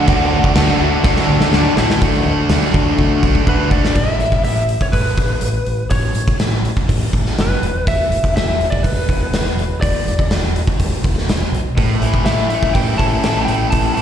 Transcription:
Already playing: lead electric guitar F#5
0.07 fingered electric bass D2, overdriven electric guitar D3 F#3 A3 D4 F#4 A4, kick, crash
0.44 kick
0.55 fingered electric bass D2, overdriven electric guitar D3 D4 F#4 A4, snare, crash
0.79 fingered electric bass D2, overdriven electric guitar D3 F#3 A3 D4 F#4 A4
1.04 fingered electric bass D2, overdriven electric guitar D3 D4 F#4 A4, kick, snare
1.16 snare
1.29 fingered electric bass D2
1.41 snare
1.53 fingered electric bass D2, overdriven electric guitar D3 F#3 A3 D4 F#4 A4, snare
1.77 fingered electric bass A1, overdriven electric guitar A2 E3 A3 E4 A4, snare
1.90 snare
2.01 fingered electric bass D2, overdriven electric guitar D3 A3 D4 F#4 A4, kick, open hi-hat
2.26 fingered electric bass D2, overdriven electric guitar A3 D4 F#4
2.49 fingered electric bass D2, overdriven electric guitar D3 A3 D4, snare, open hi-hat
2.54 overdriven electric guitar F#4
2.74 fingered electric bass D2, overdriven electric guitar D3 D4 F#4 A4, kick
2.98 fingered electric bass D2, kick
3.21 fingered electric bass B1, overdriven electric guitar A3 D4 F#4, kick
3.35 kick
3.46 fingered electric bass D2, overdriven electric guitar D3 A3 D4 F#4 A4, lead electric guitar B4, kick
3.70 fingered electric bass G#1, overdriven electric guitar A3 D4 F#4, lead electric guitar D5, kick
3.85 snare
3.96 fingered electric bass A1, lead electric guitar E5, kick, crash
4.19 fingered electric bass A1, open hi-hat
4.32 kick
4.44 fingered electric bass A1, lead electric guitar E5, open hi-hat
4.69 open hi-hat
4.81 lead electric guitar C#5, kick
4.92 fingered electric bass A1, lead electric guitar B4, kick, open hi-hat
5.18 fingered electric bass A1, kick, open hi-hat
5.41 fingered electric bass A1, open hi-hat
5.66 fingered electric bass A1, open hi-hat
5.90 fingered electric bass A1, lead electric guitar C#5, kick, open hi-hat
6.15 fingered electric bass A1, open hi-hat
6.28 kick
6.40 fingered electric bass A1, snare, open hi-hat
6.65 open hi-hat
6.77 kick
6.89 fingered electric bass A1, kick, open hi-hat
7.13 fingered electric bass A1, kick, open hi-hat
7.26 snare
7.38 fingered electric bass F#1, lead electric guitar B4, snare, open hi-hat
7.63 fingered electric bass E1, open hi-hat
7.87 fingered electric bass E1, lead electric guitar E5, kick, open hi-hat
8.10 fingered electric bass E1, open hi-hat
8.24 kick
8.35 fingered electric bass E1, lead electric guitar E5, snare, open hi-hat
8.61 open hi-hat
8.70 lead electric guitar D5, kick
8.83 fingered electric bass E1, lead electric guitar B4, kick, open hi-hat
9.09 fingered electric bass E1, kick, open hi-hat
9.32 fingered electric bass E1, snare, open hi-hat
9.57 fingered electric bass E1, open hi-hat
9.81 fingered electric bass E1, lead electric guitar D5, kick, open hi-hat
10.05 fingered electric bass E1, open hi-hat
10.19 kick
10.31 fingered electric bass E1, snare, open hi-hat
10.56 open hi-hat
10.67 kick
10.80 fingered electric bass E1, kick, open hi-hat
11.04 fingered electric bass E1, kick, open hi-hat
11.18 snare
11.28 fingered electric bass E1, snare, open hi-hat
11.52 fingered electric bass B1, open hi-hat
11.77 fingered electric bass A1, overdriven electric guitar A2, kick, open hi-hat
12.01 fingered electric bass A1, overdriven electric guitar E3 E4, open hi-hat
12.14 kick
12.25 fingered electric bass A1, overdriven electric guitar E3 A3, lead electric guitar E5, snare, open hi-hat
12.49 overdriven electric guitar A3 C#4, lead electric guitar E5, open hi-hat
12.63 kick
12.74 fingered electric bass A1, overdriven electric guitar E3 E4, lead electric guitar G5, kick, open hi-hat
12.98 fingered electric bass A1, overdriven electric guitar C#4, lead electric guitar A5, kick, open hi-hat
13.24 fingered electric bass A1, overdriven electric guitar A3 E4, snare, open hi-hat
13.45 fingered electric bass A1, overdriven electric guitar A3 C#4, lead electric guitar G5, open hi-hat
13.70 fingered electric bass A1, overdriven electric guitar A2, lead electric guitar A5, kick, open hi-hat
13.94 fingered electric bass A1, overdriven electric guitar E3 E4, lead electric guitar A5, open hi-hat

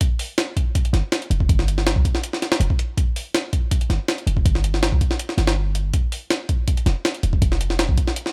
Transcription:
0.01 kick, closed hi-hat
0.19 open hi-hat
0.38 snare, closed hi-hat
0.57 kick, closed hi-hat
0.75 kick, closed hi-hat
0.85 closed hi-hat
0.93 808-style bass G1, snare, closed hi-hat
1.12 snare, closed hi-hat
1.22 closed hi-hat
1.30 808-style bass F1, closed hi-hat
1.40 kick
1.49 808-style bass G1, kick, closed hi-hat
1.59 snare
1.68 closed hi-hat
1.78 snare
1.87 snare, closed hi-hat
1.96 808-style bass D2, kick
2.05 kick, closed hi-hat
2.15 snare
2.24 closed hi-hat
2.33 snare
2.42 snare, closed hi-hat
2.52 snare
2.60 808-style bass F1, closed hi-hat
2.70 kick
2.79 closed hi-hat
2.98 kick, closed hi-hat
3.16 open hi-hat
3.35 snare, closed hi-hat
3.53 kick, closed hi-hat
3.71 kick, closed hi-hat
3.81 closed hi-hat
3.90 808-style bass G1, snare, closed hi-hat
4.08 snare, closed hi-hat
4.18 closed hi-hat
4.27 808-style bass F1, closed hi-hat
4.37 kick
4.46 808-style bass G1, kick, closed hi-hat
4.55 snare
4.64 closed hi-hat
4.74 snare
4.83 snare, closed hi-hat
4.92 808-style bass D2, kick
5.01 kick, closed hi-hat
5.11 snare
5.19 closed hi-hat
5.29 snare
5.38 808-style bass G1, snare, closed hi-hat
5.47 snare
5.75 closed hi-hat
5.94 kick, closed hi-hat
6.12 open hi-hat
6.30 snare, closed hi-hat
6.49 kick, closed hi-hat
6.68 kick, closed hi-hat
6.77 closed hi-hat
6.86 808-style bass F1, snare, closed hi-hat
7.05 snare, closed hi-hat
7.15 closed hi-hat
7.23 808-style bass D#1, closed hi-hat
7.33 kick
7.42 808-style bass F1, kick, closed hi-hat
7.52 snare
7.61 closed hi-hat
7.70 snare
7.79 snare, closed hi-hat
7.89 808-style bass C2, kick
7.98 kick, closed hi-hat
8.08 snare
8.16 closed hi-hat
8.26 snare

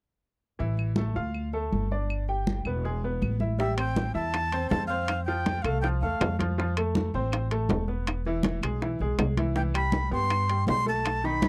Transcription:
0.59 upright bass A1, upright piano E3 E4, high conga
0.77 high conga, claves
0.96 upright piano A3 A4, high conga
1.16 upright bass D2, upright piano F4 F5, high conga
1.34 high conga, claves
1.53 upright piano A3 A4, high conga
1.73 upright bass G1, high conga
1.91 upright piano D4 D5, high conga
2.10 high conga, claves
2.28 upright piano G4 G5, high conga
2.47 high conga
2.65 upright bass E1, upright piano B3 B4, claves
2.84 upright piano G#3 G#4, high conga
3.03 upright piano B3 B4, high conga
3.21 upright bass A1, high conga, claves
3.40 upright piano E4 E5, high conga
3.59 upright piano G3 G4, flute E5, high bongo, high conga
3.77 upright piano C4 C5, flute G5, high conga, high timbale, claves
3.96 high bongo, high conga, low timbale
4.14 upright bass E2, upright piano E4 E5, flute A5, high conga
4.34 high bongo, high conga, high timbale, claves
4.52 upright piano C4 C5, high conga, high timbale
4.70 upright bass F2, flute A5, high bongo, low bongo, high conga, low timbale
4.87 upright piano C4 C5, flute F5, high conga
5.08 high bongo, high conga, high timbale, claves
5.25 upright piano F3 F4, flute G5, high conga
5.46 high bongo, high conga, high timbale, low timbale
5.62 upright bass C2, upright piano A3 A4, flute F5, high bongo, high timbale, claves
5.81 upright piano F3 F4, flute G5, high bongo, high conga
6.01 upright bass E2, upright piano A3 A4, flute F5, high bongo, high conga
6.21 upright bass F2, high bongo, low bongo, high conga, high timbale, low timbale, claves
6.39 upright piano F3 F4, high bongo, high conga, high timbale
6.58 upright piano F3 F4, high bongo, high conga
6.77 upright piano A3 A4, high conga, high timbale, claves
6.95 high bongo, high conga, low timbale
7.14 upright bass A1, upright piano C4 C5, high conga
7.32 high bongo, high conga, high timbale, claves
7.51 upright piano A3 A4, high conga, high timbale
7.69 upright bass E1, high bongo, low bongo, high conga, low timbale
7.88 upright piano B3 B4, high conga
8.06 high bongo, high conga, high timbale, claves
8.25 upright piano E3 E4, high conga
8.43 high bongo, high conga, high timbale, low timbale
8.62 upright bass B1, upright piano G#3 G#4, high bongo, high timbale, claves
8.81 upright piano E3 E4, high bongo, high conga
8.99 upright bass B1, upright piano G#3 G#4, high bongo, high conga
9.18 upright bass C2, high bongo, low bongo, high conga, high timbale, low timbale, claves
9.37 upright piano E3 E4, high bongo, high conga, high timbale
9.55 upright piano E3 E4, flute G5, high bongo, high conga
9.74 upright piano G3 G4, flute B5, high conga, high timbale, claves
9.92 high bongo, high conga, low timbale
10.11 upright bass G2, upright piano B3 G4, flute C6, high conga
10.30 high bongo, high conga, high timbale, claves
10.48 upright piano G3 G4, high conga, high timbale
10.67 upright bass B1, flute C6, high bongo, low bongo, high conga, low timbale
10.86 upright piano A3 A4, flute A5, high conga
11.05 high bongo, high conga, high timbale, claves
11.24 upright piano D#3 D#4, flute B5, high conga
11.42 high bongo, high conga, high timbale, low timbale

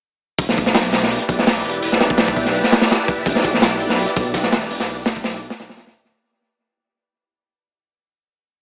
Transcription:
0.38 detuned saw bass E1, string machine E4 G4 B4 D5, kick, open hi-hat
0.48 detuned saw bass B1, snare
0.57 kick, open hi-hat
0.66 snare
0.74 snare, open hi-hat
0.92 snare, open hi-hat
1.03 snare
1.11 open hi-hat
1.20 closed hi-hat
1.29 detuned saw bass B1, kick, open hi-hat
1.39 snare
1.46 snare, open hi-hat
1.57 snare
1.65 detuned saw bass E1, open hi-hat
1.74 closed hi-hat
1.82 detuned saw bass E1, open hi-hat
1.92 detuned saw bass B1, snare
2.00 snare, open hi-hat
2.10 kick
2.18 snare, open hi-hat
2.28 kick
2.36 kick, open hi-hat
2.45 snare
2.54 open hi-hat
2.64 snare
2.72 snare, open hi-hat
2.81 snare, open hi-hat
2.90 snare, open hi-hat
3.08 kick, open hi-hat
3.26 detuned saw bass E1, kick, open hi-hat, tambourine
3.35 detuned saw bass B1, snare
3.44 kick, open hi-hat, tambourine
3.54 snare
3.62 snare, open hi-hat, tambourine
3.80 open hi-hat, tambourine
3.90 snare
3.98 open hi-hat, tambourine
4.08 closed hi-hat
4.16 detuned saw bass B1, kick, open hi-hat, tambourine
4.33 kick, snare, open hi-hat, tambourine
4.43 snare
4.52 detuned saw bass E1, snare, open hi-hat, tambourine
4.70 detuned saw bass E1, open hi-hat
4.79 detuned saw bass B1, snare
4.89 tambourine
5.06 snare, open hi-hat, tambourine
5.16 kick
5.24 snare, open hi-hat, tambourine
5.34 snare
5.42 open hi-hat
5.50 snare, open hi-hat
5.60 detuned saw bass B1, snare, open hi-hat, tambourine
5.69 snare, open hi-hat
5.77 snare, open hi-hat, tambourine
5.87 snare, open hi-hat
5.96 detuned saw bass D1, open hi-hat, tambourine
6.05 snare

